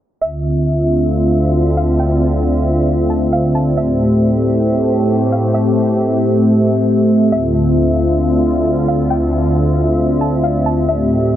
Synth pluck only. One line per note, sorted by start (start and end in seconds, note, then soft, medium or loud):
0.21 1.73 E5 loud
1.77 1.98 F5 medium
1.99 3.06 G5 loud
3.10 3.31 A5 medium
3.33 3.54 F5 medium
3.55 3.76 A5 medium
3.77 5.29 E5 loud
5.32 5.53 F5 medium
5.54 7.28 E5 medium
7.32 8.84 E5 medium
8.88 9.09 F5 medium
9.10 10.17 G5 loud
10.21 10.42 A5 medium
10.44 10.65 F5 medium
10.66 10.87 A5 medium
10.89 11.36 E5 loud